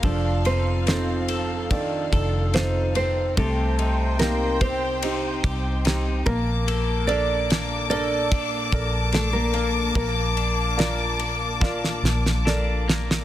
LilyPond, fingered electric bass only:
\new Staff \with { instrumentName = "Fingered electric bass" } { \clef bass \time 4/4 \key bes \major \tempo 4 = 72 f,,2~ f,,8 f,,4. | c,2~ c,8 c,4 bes,,8~ | bes,,2~ bes,,8 bes,,4. | bes,,2~ bes,,8 bes,,4. | }